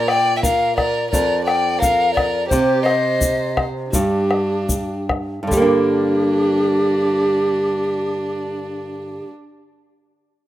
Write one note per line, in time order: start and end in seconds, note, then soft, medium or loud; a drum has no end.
0.00 1.09 A#2 medium
0.00 0.11 D5 loud
0.08 0.38 D5 medium
0.08 0.36 G5 loud
0.08 bombo rim medium
0.36 0.45 E5 medium
0.36 0.44 G5 medium
0.42 0.76 A#4 medium
0.42 0.76 F5 loud
0.42 bombo low medium
0.42 shaker loud
0.76 1.10 A#4 medium
0.76 1.09 D5 loud
0.76 bombo rim medium
0.76 bombo low medium
1.10 2.48 F2 medium
1.10 1.44 A#4 medium
1.10 1.44 D5 loud
1.10 bombo low medium
1.10 shaker medium
1.45 1.81 D5 medium
1.45 1.81 G5 loud
1.45 bombo rim medium
1.79 2.13 A#4 medium
1.79 2.15 F5 loud
1.79 bombo low medium
1.79 shaker loud
2.13 2.47 A#4 medium
2.13 2.48 D5 loud
2.17 bombo rim medium
2.17 bombo low medium
2.48 3.90 C3 medium
2.48 2.85 G4 medium
2.48 2.83 C5 loud
2.48 bombo low medium
2.48 shaker medium
2.82 3.65 C5 medium
2.82 3.64 D#5 loud
2.86 bombo rim medium
3.21 bombo low medium
3.21 shaker loud
3.57 bombo rim medium
3.57 bombo low medium
3.91 5.42 G2 medium
3.91 5.05 D4 medium
3.91 5.04 G4 medium
3.91 bombo low medium
3.91 shaker loud
4.31 bombo rim medium
4.69 bombo low medium
4.69 shaker loud
5.09 bombo rim medium
5.09 bombo low medium
5.43 9.19 G2 medium
5.47 9.24 D3 medium
5.47 9.27 D4 medium
5.47 9.27 G4 loud
5.47 bombo low medium
5.52 9.29 G3 medium
5.52 shaker medium
5.57 9.33 A#3 medium
5.62 9.38 D4 medium